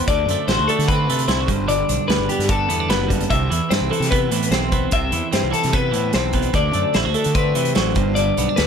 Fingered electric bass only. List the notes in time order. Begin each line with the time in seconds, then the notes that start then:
0.08 D2
0.26 F#2
0.48 A1
0.59 D2
0.79 D3
1.09 C3
1.28 C2
1.49 G1
1.90 B1
2.09 D2
2.18 G1
2.39 G2
2.70 E2
2.89 F#1
3.31 C2
3.51 E2
3.71 G2
3.81 C2
4.00 C3
4.31 A2
4.51 B1
4.93 C2
5.12 E2
5.33 G2
5.43 C2
5.64 C3
5.94 A2
6.14 B1
6.54 D2
6.75 F#2
6.95 A1
7.06 D2
7.26 D3
7.57 C3
7.76 A1
7.96 G1
8.37 B1
8.59 D2